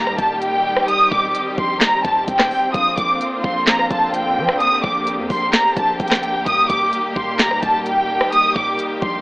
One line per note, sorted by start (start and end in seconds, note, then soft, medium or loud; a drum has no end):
0.00 0.17 D#1 loud
0.00 2.71 D#3 medium
0.00 2.71 G3 medium
0.00 0.86 A#3 medium
0.00 2.71 G4 medium
0.00 0.16 A#5 loud
0.07 cross-stick medium
0.18 0.74 D#1 loud
0.18 0.39 A5 medium
0.18 kick medium
0.18 closed hi-hat medium
0.42 0.86 G5 medium
0.42 closed hi-hat medium
0.77 cross-stick medium
0.88 6.42 C4 medium
0.88 1.09 D#6 loud
0.88 closed hi-hat medium
1.12 1.34 D#1 loud
1.12 1.32 D6 medium
1.12 kick medium
1.35 closed hi-hat medium
1.58 1.80 A#1 loud
1.58 1.79 C6 medium
1.58 kick loud
1.81 2.02 A#5 medium
1.81 snare loud
1.81 clap loud
1.81 closed hi-hat medium
2.05 2.27 D#1 loud
2.05 2.25 A5 medium
2.05 kick loud
2.05 closed hi-hat medium
2.28 2.50 D#1 loud
2.28 2.72 G5 medium
2.28 kick medium
2.28 closed hi-hat medium
2.39 cross-stick loud
2.39 snare loud
2.39 clap medium
2.51 open hi-hat medium
2.74 2.97 A#1 loud
2.74 6.43 D3 medium
2.74 9.21 A#3 medium
2.74 4.58 F4 loud
2.74 2.95 D#6 loud
2.74 kick loud
2.74 closed hi-hat medium
2.98 3.20 A#1 loud
2.98 3.19 D6 medium
2.98 kick loud
2.98 closed hi-hat medium
3.21 closed hi-hat medium
3.44 3.89 A#1 loud
3.44 3.65 C6 medium
3.44 kick loud
3.67 3.88 A#5 loud
3.67 snare loud
3.67 clap medium
3.67 closed hi-hat medium
3.79 cross-stick medium
3.91 4.39 A#1 loud
3.91 4.12 A5 medium
3.91 kick loud
3.91 closed hi-hat medium
4.14 4.57 G5 medium
4.14 closed hi-hat medium
4.37 4.48 F3 loud
4.49 cross-stick loud
4.60 9.21 G4 medium
4.60 4.81 D#6 loud
4.60 closed hi-hat medium
4.84 5.20 A#1 loud
4.84 5.04 D6 medium
4.84 kick loud
5.07 closed hi-hat medium
5.18 5.30 F2 loud
5.30 5.52 A#1 loud
5.30 5.51 C6 medium
5.30 kick loud
5.30 open hi-hat medium
5.53 5.74 A#5 loud
5.53 snare loud
5.53 clap loud
5.53 closed hi-hat medium
5.76 5.99 A#1 loud
5.76 5.97 A5 medium
5.76 kick medium
5.76 closed hi-hat medium
6.00 6.45 A#1 loud
6.00 6.44 G5 medium
6.00 kick medium
6.00 closed hi-hat soft
6.08 cross-stick loud
6.08 snare loud
6.08 clap medium
6.08 closed hi-hat medium
6.15 closed hi-hat medium
6.23 closed hi-hat medium
6.46 6.69 D#1 loud
6.46 9.21 D#3 medium
6.46 9.21 G3 medium
6.46 6.67 D#6 loud
6.46 kick loud
6.46 closed hi-hat medium
6.70 6.92 D#1 loud
6.70 6.91 D6 medium
6.70 kick medium
6.70 closed hi-hat medium
6.93 closed hi-hat medium
7.16 7.61 D#1 loud
7.16 7.37 C6 medium
7.16 kick loud
7.39 7.60 A#5 loud
7.39 snare loud
7.39 clap loud
7.39 closed hi-hat medium
7.51 cross-stick medium
7.62 8.19 D#1 loud
7.62 7.83 A5 medium
7.62 kick medium
7.62 closed hi-hat medium
7.86 8.30 G5 medium
7.86 closed hi-hat medium
8.21 cross-stick loud
8.32 8.53 D#6 loud
8.32 closed hi-hat medium
8.56 8.78 D#1 loud
8.56 8.77 D6 medium
8.56 kick medium
8.79 closed hi-hat medium
9.02 9.21 A#1 loud
9.02 9.21 C6 medium
9.02 kick loud